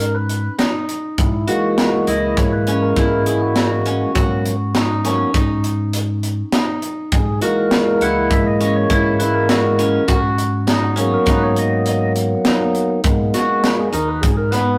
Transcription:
0.00 0.47 G#2 medium
0.00 0.65 C#4 medium
0.00 0.58 D#4 medium
0.00 0.16 A#4 medium
0.00 closed hi-hat medium
0.15 0.70 B4 medium
0.29 closed hi-hat medium
0.59 2.03 D#4 medium
0.59 snare medium
0.59 closed hi-hat medium
0.89 closed hi-hat medium
1.18 1.45 G#2 medium
1.18 1.49 E4 medium
1.18 kick loud
1.18 closed hi-hat medium
1.48 4.11 E3 medium
1.48 4.11 G#3 soft
1.48 4.12 A#3 medium
1.48 2.77 F#4 medium
1.48 2.10 F#4 loud
1.48 closed hi-hat medium
1.78 snare loud
1.78 closed hi-hat medium
2.07 2.34 C#2 medium
2.07 2.97 E4 medium
2.07 2.38 D#5 medium
2.07 closed hi-hat medium
2.37 2.91 G#2 loud
2.37 2.53 C#5 medium
2.37 kick loud
2.37 snare soft
2.37 closed hi-hat medium
2.52 2.83 B4 medium
2.67 3.86 C#4 medium
2.67 closed hi-hat medium
2.82 3.23 A#4 medium
2.96 4.03 G#2 medium
2.96 3.26 E4 medium
2.96 kick medium
2.96 snare soft
2.96 closed hi-hat medium
3.26 4.66 E4 medium
3.26 3.42 G#4 medium
3.26 closed hi-hat medium
3.41 4.26 F#4 medium
3.56 4.15 F#4 medium
3.56 snare loud
3.56 closed hi-hat medium
3.86 5.04 C#4 medium
3.86 closed hi-hat medium
4.14 5.22 G#2 medium
4.14 4.54 F#3 soft
4.14 4.55 A#3 soft
4.14 4.55 B3 medium
4.14 5.45 F#4 medium
4.14 kick loud
4.14 closed hi-hat medium
4.46 closed hi-hat medium
4.75 5.34 D#4 medium
4.75 snare loud
4.75 closed hi-hat medium
5.04 5.31 F#3 soft
5.04 5.31 A#3 soft
5.04 5.31 B3 medium
5.04 6.59 C#4 medium
5.04 snare soft
5.04 closed hi-hat medium
5.34 6.41 G#2 medium
5.34 6.52 D#4 medium
5.34 kick loud
5.34 closed hi-hat medium
5.64 closed hi-hat medium
5.93 closed hi-hat medium
6.23 closed hi-hat medium
6.52 7.97 D#4 medium
6.52 snare loud
6.52 closed hi-hat medium
6.82 closed hi-hat medium
7.12 7.39 G#2 medium
7.12 7.40 G#4 medium
7.12 kick loud
7.12 closed hi-hat medium
7.41 10.04 E3 medium
7.41 10.04 G#3 soft
7.41 10.05 A#3 medium
7.41 8.72 F#4 medium
7.41 8.04 A#4 medium
7.41 closed hi-hat medium
7.71 snare loud
7.71 closed hi-hat medium
8.01 8.28 C#2 medium
8.01 8.90 E4 medium
8.01 8.32 F#5 medium
8.01 closed hi-hat medium
8.31 8.84 G#2 medium
8.31 8.46 E5 medium
8.31 kick loud
8.31 closed hi-hat medium
8.46 8.76 D#5 medium
8.61 9.78 C#4 medium
8.61 closed hi-hat medium
8.76 9.21 C#5 loud
8.90 9.97 G#2 medium
8.90 9.19 E4 medium
8.90 kick medium
8.90 closed hi-hat medium
9.19 10.59 E4 medium
9.19 9.34 B4 medium
9.19 closed hi-hat medium
9.34 10.19 A#4 medium
9.49 10.07 F#4 medium
9.49 snare loud
9.49 closed hi-hat medium
9.79 10.96 C#4 medium
9.79 closed hi-hat medium
10.08 11.15 G#2 medium
10.08 11.38 F#4 medium
10.08 kick loud
10.08 closed hi-hat medium
10.38 closed hi-hat medium
10.67 11.25 D#4 medium
10.67 10.82 G#4 medium
10.67 snare loud
10.67 closed hi-hat medium
10.83 10.98 F#4 medium
10.96 13.01 F#3 medium
10.96 13.01 A#3 soft
10.96 13.02 B3 medium
10.96 12.50 C#4 medium
10.96 11.13 G#4 medium
10.96 closed hi-hat medium
11.14 11.28 A#4 medium
11.26 12.34 G#2 loud
11.26 12.45 D#4 medium
11.26 11.43 B4 medium
11.26 kick loud
11.26 snare soft
11.26 closed hi-hat medium
11.43 11.58 C#5 medium
11.56 12.13 D#5 medium
11.56 closed hi-hat medium
11.86 closed hi-hat medium
12.16 closed hi-hat medium
12.45 13.89 D#4 medium
12.45 snare loud
12.45 closed hi-hat medium
12.75 closed hi-hat medium
13.03 13.31 G#2 medium
13.03 13.89 G#3 soft
13.03 13.89 A#3 medium
13.03 13.89 B3 medium
13.03 kick loud
13.03 closed hi-hat medium
13.34 14.64 F#4 medium
13.34 snare soft
13.34 closed hi-hat medium
13.64 13.71 B4 loud
13.64 snare loud
13.64 closed hi-hat medium
13.79 13.94 G#4 medium
13.93 14.20 D#2 medium
13.93 14.78 D#4 medium
13.93 14.09 A#4 medium
13.93 closed hi-hat medium
14.08 14.22 B4 medium
14.21 14.77 G#2 loud
14.21 14.36 G#4 medium
14.21 kick loud
14.21 closed hi-hat medium
14.37 14.53 A#4 medium
14.51 14.78 B3 medium
14.51 14.78 B4 medium
14.51 snare soft
14.51 closed hi-hat medium

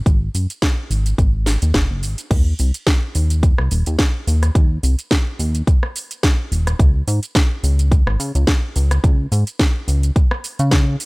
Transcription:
0.06 0.30 G#1 loud
0.06 kick loud
0.06 closed hi-hat medium
0.06 shaker soft
0.34 0.47 F#2 medium
0.34 open hi-hat medium
0.34 shaker medium
0.50 closed hi-hat medium
0.50 shaker soft
0.62 kick loud
0.62 snare loud
0.62 closed hi-hat medium
0.62 shaker soft
0.90 1.14 G#1 medium
0.90 open hi-hat medium
0.90 shaker medium
1.06 closed hi-hat medium
1.06 shaker soft
1.18 1.57 G#1 medium
1.18 kick loud
1.18 closed hi-hat medium
1.18 shaker soft
1.46 snare medium
1.46 open hi-hat loud
1.46 shaker medium
1.62 1.72 D#2 medium
1.62 closed hi-hat medium
1.62 shaker soft
1.74 1.87 F#1 loud
1.74 kick loud
1.74 snare loud
1.74 closed hi-hat medium
1.74 shaker soft
1.90 2.05 F#1 loud
2.03 2.15 G#1 medium
2.03 open hi-hat medium
2.03 shaker medium
2.18 closed hi-hat medium
2.18 shaker soft
2.31 2.54 D#2 loud
2.31 kick loud
2.31 closed hi-hat medium
2.31 crash loud
2.31 shaker soft
2.59 2.72 C2 medium
2.59 open hi-hat loud
2.59 shaker medium
2.74 closed hi-hat medium
2.74 shaker soft
2.87 kick loud
2.87 snare loud
2.87 closed hi-hat medium
2.87 shaker soft
3.15 3.54 D#2 medium
3.15 open hi-hat loud
3.15 shaker medium
3.30 closed hi-hat medium
3.30 shaker soft
3.43 kick loud
3.43 closed hi-hat medium
3.43 shaker soft
3.58 3.69 C2 medium
3.58 cross-stick medium
3.71 3.84 D#1 loud
3.71 open hi-hat loud
3.71 shaker medium
3.86 3.97 D#2 loud
3.86 closed hi-hat medium
3.86 shaker soft
3.99 kick loud
3.99 snare loud
3.99 closed hi-hat medium
3.99 shaker soft
4.27 4.50 D#2 loud
4.27 open hi-hat loud
4.27 shaker medium
4.43 cross-stick medium
4.43 closed hi-hat medium
4.43 shaker soft
4.55 4.78 D#2 loud
4.55 kick loud
4.55 closed hi-hat medium
4.55 shaker soft
4.83 4.96 C2 medium
4.83 open hi-hat loud
4.83 shaker medium
4.99 closed hi-hat medium
4.99 shaker soft
5.11 kick loud
5.11 snare loud
5.11 closed hi-hat medium
5.11 shaker soft
5.39 5.62 D#2 medium
5.39 open hi-hat loud
5.39 shaker medium
5.55 closed hi-hat medium
5.55 shaker soft
5.67 kick loud
5.67 closed hi-hat medium
5.67 shaker soft
5.83 cross-stick medium
5.96 open hi-hat loud
5.96 shaker medium
6.11 closed hi-hat medium
6.11 shaker soft
6.23 kick loud
6.23 snare loud
6.23 closed hi-hat medium
6.23 shaker soft
6.51 6.75 D#1 medium
6.51 open hi-hat loud
6.51 shaker medium
6.67 cross-stick medium
6.67 closed hi-hat medium
6.67 shaker soft
6.79 7.03 C#2 loud
6.79 kick loud
6.79 closed hi-hat medium
6.79 shaker soft
7.08 7.20 G#2 medium
7.08 open hi-hat loud
7.08 shaker medium
7.23 closed hi-hat medium
7.23 shaker soft
7.35 kick loud
7.35 snare loud
7.35 closed hi-hat medium
7.35 shaker soft
7.63 8.02 C#2 medium
7.63 open hi-hat loud
7.63 shaker medium
7.79 closed hi-hat medium
7.79 shaker soft
7.92 kick loud
7.92 closed hi-hat medium
7.92 shaker soft
8.07 8.17 G#1 medium
8.07 cross-stick medium
8.19 8.32 C#3 loud
8.19 open hi-hat loud
8.19 shaker medium
8.35 8.45 C#2 loud
8.35 closed hi-hat medium
8.35 shaker soft
8.47 kick loud
8.47 snare loud
8.47 closed hi-hat medium
8.47 shaker soft
8.76 8.99 C#2 loud
8.76 open hi-hat loud
8.76 shaker medium
8.91 cross-stick medium
8.91 closed hi-hat medium
8.91 shaker soft
9.04 9.27 C#2 loud
9.04 kick loud
9.04 closed hi-hat soft
9.04 shaker soft
9.32 9.44 G#2 medium
9.32 open hi-hat loud
9.32 shaker medium
9.47 closed hi-hat medium
9.47 shaker soft
9.59 kick loud
9.59 snare loud
9.59 closed hi-hat medium
9.59 shaker soft
9.88 10.11 C#2 medium
9.88 open hi-hat loud
9.88 shaker medium
10.03 closed hi-hat medium
10.03 shaker soft
10.16 kick loud
10.16 closed hi-hat soft
10.16 shaker soft
10.31 cross-stick medium
10.44 open hi-hat loud
10.44 shaker medium
10.59 10.96 C#3 medium
10.59 closed hi-hat medium
10.59 shaker soft
10.71 kick loud
10.71 snare loud
10.71 closed hi-hat medium
10.71 shaker soft
11.00 open hi-hat loud
11.00 shaker medium

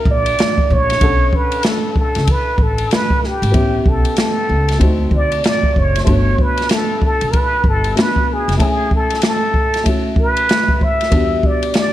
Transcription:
0.00 0.96 A#3 medium
0.00 0.97 D4 medium
0.00 0.97 E4 medium
0.00 0.98 F#4 medium
0.05 0.32 A#1 loud
0.05 kick loud
0.10 0.74 D5 loud
0.26 ride medium
0.39 snare loud
0.39 hi-hat pedal soft
0.39 ride medium
0.58 kick medium
0.70 0.96 A#1 medium
0.70 1.37 C#5 loud
0.70 kick medium
0.90 snare soft
0.90 ride medium
0.99 1.28 B1 medium
0.99 3.49 C#4 medium
0.99 3.50 D4 medium
0.99 3.50 F#5 medium
0.99 kick loud
0.99 ride medium
1.03 3.51 A4 medium
1.33 1.69 B4 medium
1.33 kick medium
1.52 ride medium
1.63 snare loud
1.63 hi-hat pedal medium
1.63 ride medium
1.68 1.98 A4 medium
1.96 2.33 A4 medium
1.96 kick medium
2.15 2.26 C#2 medium
2.15 snare soft
2.15 ride medium
2.27 2.64 B4 medium
2.27 kick medium
2.27 ride medium
2.58 2.85 A1 medium
2.58 kick medium
2.62 2.95 A4 medium
2.78 ride medium
2.91 3.27 B4 medium
2.91 snare loud
2.91 hi-hat pedal soft
2.91 ride medium
3.10 kick medium
3.24 3.90 G4 medium
3.24 snare soft
3.42 3.52 G#1 medium
3.42 ride medium
3.52 3.80 A1 medium
3.52 4.77 B3 medium
3.52 4.77 C#4 medium
3.52 4.78 E4 medium
3.52 kick loud
3.52 ride medium
3.56 4.79 G4 medium
3.86 4.02 B1 medium
3.86 4.19 A4 medium
3.86 kick medium
4.05 ride medium
4.16 4.83 A4 medium
4.16 snare loud
4.16 hi-hat pedal medium
4.16 ride medium
4.49 4.75 C#2 medium
4.68 snare soft
4.68 ride medium
4.78 5.07 D2 loud
4.78 6.03 A3 medium
4.78 6.04 C4 medium
4.78 6.05 D#4 medium
4.78 kick medium
4.78 ride medium
4.82 6.05 F#4 medium
5.11 5.38 D2 medium
5.11 kick medium
5.15 5.43 D5 medium
5.32 ride medium
5.44 5.80 D5 loud
5.44 snare loud
5.44 hi-hat pedal soft
5.44 ride medium
5.63 kick medium
5.76 6.02 F#1 medium
5.76 6.03 C#5 medium
5.76 kick medium
5.95 snare soft
5.95 ride medium
6.04 6.33 G1 medium
6.04 7.91 A3 medium
6.04 7.92 B3 medium
6.04 7.93 D4 medium
6.04 6.11 C5 medium
6.04 kick loud
6.04 ride medium
6.09 7.93 F#4 medium
6.09 6.43 C#5 medium
6.38 6.74 B4 medium
6.38 kick loud
6.57 snare soft
6.57 ride medium
6.69 7.03 A4 medium
6.69 snare loud
6.69 hi-hat pedal medium
6.69 ride medium
7.02 7.32 A4 medium
7.02 kick medium
7.21 7.31 B1 medium
7.21 ride medium
7.31 7.38 A#4 medium
7.31 kick medium
7.31 ride medium
7.36 7.66 B4 loud
7.64 7.91 G1 medium
7.64 kick medium
7.68 7.96 A4 medium
7.84 ride medium
7.95 8.56 A3 soft
7.95 8.59 B3 soft
7.95 8.60 D4 soft
7.95 8.60 F#4 medium
7.95 snare loud
7.95 hi-hat pedal soft
7.95 ride medium
8.00 8.34 B4 medium
8.16 kick medium
8.32 8.57 G#4 medium
8.48 8.58 F1 medium
8.48 snare soft
8.48 ride medium
8.57 9.82 A3 medium
8.57 9.83 C#4 medium
8.57 9.84 E4 medium
8.57 8.65 A4 medium
8.57 kick loud
8.57 ride medium
8.62 8.93 G#4 medium
8.62 9.84 G#5 medium
8.91 9.22 A4 medium
8.91 kick medium
9.10 snare soft
9.10 ride medium
9.22 snare loud
9.22 hi-hat pedal medium
9.22 ride medium
9.26 9.89 A4 medium
9.54 kick medium
9.74 snare soft
9.74 ride medium
9.83 11.08 A3 medium
9.83 11.09 C#4 medium
9.83 11.10 E4 medium
9.83 kick medium
9.83 ride medium
9.88 11.11 F#4 medium
10.16 kick loud
10.21 10.85 B4 loud
10.37 ride medium
10.49 snare loud
10.49 hi-hat pedal soft
10.49 ride medium
10.68 kick medium
10.81 11.48 E5 loud
10.81 kick medium
11.01 snare soft
11.01 ride medium
11.10 11.38 E2 loud
11.10 11.93 G3 medium
11.10 11.93 B3 medium
11.10 11.93 D4 medium
11.10 kick medium
11.10 ride medium
11.14 11.93 F#4 medium
11.43 11.77 D5 medium
11.43 kick medium
11.63 ride medium
11.74 snare loud
11.74 hi-hat pedal medium
11.74 ride medium
11.78 11.93 D5 loud

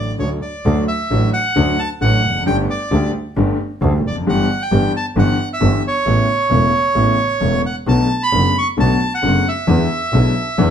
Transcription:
0.00 0.14 A1 medium
0.00 0.15 A1 medium
0.00 0.15 A2 medium
0.00 0.14 D3 medium
0.00 0.14 F#3 medium
0.00 0.15 A3 medium
0.00 0.16 F#4 medium
0.00 0.15 D5 medium
0.18 0.38 D2 medium
0.18 0.38 D3 medium
0.18 0.38 F#3 medium
0.18 0.38 A3 soft
0.18 0.38 F#4 medium
0.18 0.29 C#5 medium
0.42 0.84 D5 medium
0.65 0.84 D2 loud
0.65 0.84 D2 medium
0.65 0.84 D3 medium
0.65 0.84 F#3 medium
0.65 0.84 A3 medium
0.65 0.84 F#4 medium
0.88 1.30 E5 medium
1.10 1.30 A1 medium
1.10 1.30 A2 medium
1.10 1.29 D3 medium
1.10 1.29 F#3 medium
1.10 1.30 A3 medium
1.10 1.30 F#4 medium
1.33 1.80 F#5 loud
1.56 1.75 D2 medium
1.56 1.75 D2 loud
1.56 1.75 D3 loud
1.56 1.75 F#3 medium
1.56 1.75 A3 medium
1.56 1.75 F#4 medium
1.79 1.89 A5 loud
2.01 2.20 A1 medium
2.01 2.20 A1 loud
2.01 2.20 A2 medium
2.01 2.20 D3 medium
2.01 2.20 F#3 medium
2.01 2.20 A3 medium
2.01 2.20 F#4 medium
2.01 2.43 F#5 loud
2.24 2.46 F1 medium
2.29 2.35 E2 medium
2.35 2.41 F2 medium
2.40 2.46 F#2 medium
2.46 2.65 G1 medium
2.46 2.66 G1 loud
2.46 2.65 G2 medium
2.46 2.65 D3 medium
2.46 2.65 G3 medium
2.46 2.65 A3 medium
2.46 2.65 G4 medium
2.46 2.57 G5 loud
2.70 3.11 D5 medium
2.91 3.10 D2 medium
2.91 3.10 D2 loud
2.91 3.10 D3 medium
2.91 3.10 G3 medium
2.91 3.10 A3 medium
2.91 3.10 G4 medium
3.36 3.55 G1 loud
3.36 3.55 G2 loud
3.36 3.55 D3 medium
3.36 3.55 G3 medium
3.36 3.55 A3 medium
3.36 3.55 G4 medium
3.81 4.00 D2 medium
3.81 4.00 D2 loud
3.81 4.00 D3 medium
3.81 4.00 G3 medium
3.81 4.00 A3 medium
3.81 4.00 G4 medium
4.05 4.26 F1 medium
4.05 4.16 D5 medium
4.09 4.15 E2 medium
4.15 4.21 F2 medium
4.21 4.26 F#2 medium
4.27 4.45 G1 loud
4.27 4.45 G2 loud
4.27 4.45 E3 medium
4.27 4.45 G3 medium
4.27 4.45 B3 medium
4.27 4.45 G4 medium
4.27 4.62 F#5 loud
4.62 4.93 G5 loud
4.71 4.90 G1 loud
4.71 4.90 G1 medium
4.71 4.91 G2 medium
4.71 4.90 E3 medium
4.71 4.90 G3 medium
4.71 4.90 B3 medium
4.71 4.91 G4 medium
4.97 5.06 A5 medium
5.16 5.35 G1 loud
5.16 5.35 G2 loud
5.16 5.35 E3 medium
5.16 5.35 G3 medium
5.16 5.35 B3 medium
5.16 5.35 G4 medium
5.16 5.49 F#5 loud
5.53 5.83 E5 loud
5.60 5.80 G1 medium
5.60 5.80 G1 loud
5.60 5.80 G2 medium
5.60 5.79 E3 medium
5.60 5.79 G3 medium
5.60 5.80 B3 medium
5.60 5.80 G4 medium
5.88 7.62 C#5 loud
6.05 6.25 A1 loud
6.05 6.25 A2 medium
6.05 6.24 C#3 medium
6.05 6.25 A3 medium
6.05 6.25 B3 medium
6.05 6.25 E4 medium
6.50 6.69 E1 loud
6.50 6.69 E1 medium
6.50 6.69 E2 medium
6.50 6.69 C#3 medium
6.50 6.69 A3 medium
6.50 6.69 B3 medium
6.50 6.70 E4 medium
6.95 7.14 A1 medium
6.95 7.15 A1 loud
6.95 7.14 A2 medium
6.95 7.14 C#3 medium
6.95 7.14 A3 medium
6.95 7.14 B3 medium
6.95 7.15 E4 medium
7.40 7.60 E1 medium
7.40 7.60 E2 medium
7.40 7.60 C#3 medium
7.40 7.60 A3 medium
7.40 7.60 B3 medium
7.40 7.60 E4 medium
7.66 7.76 F#5 medium
7.87 8.06 B1 medium
7.87 8.06 B2 medium
7.87 8.06 D3 medium
7.87 8.06 A3 medium
7.87 8.06 B3 medium
7.87 8.06 F#4 medium
7.87 8.22 A5 loud
8.23 8.57 B5 loud
8.32 8.51 F#1 medium
8.32 8.51 F#1 loud
8.32 8.51 F#2 medium
8.32 8.51 D3 medium
8.32 8.51 A3 medium
8.32 8.51 B3 medium
8.32 8.51 F#4 medium
8.58 8.68 C#6 loud
8.77 8.96 B1 loud
8.77 8.96 B2 medium
8.77 8.96 D3 medium
8.77 8.96 A3 medium
8.77 8.96 B3 medium
8.77 8.96 F#4 medium
8.77 9.13 A5 loud
9.15 9.48 F#5 loud
9.22 9.41 F#1 medium
9.22 9.42 F#1 loud
9.22 9.41 F#2 medium
9.22 9.41 D3 medium
9.22 9.41 A3 medium
9.22 9.41 B3 medium
9.22 9.41 F#4 medium
9.48 10.70 E5 loud
9.67 9.86 E2 medium
9.67 9.86 E2 loud
9.67 9.86 D3 medium
9.67 9.86 E3 loud
9.67 9.86 G#3 medium
9.67 9.86 B3 medium
9.67 9.86 E4 medium
10.12 10.31 B1 loud
10.12 10.31 B1 medium
10.12 10.32 B2 loud
10.12 10.31 D3 medium
10.12 10.32 G#3 medium
10.12 10.32 B3 medium
10.12 10.32 E4 medium
10.58 10.70 E2 loud
10.58 10.70 D3 medium
10.58 10.70 E3 loud
10.58 10.70 G#3 medium
10.58 10.70 B3 medium
10.58 10.70 E4 medium

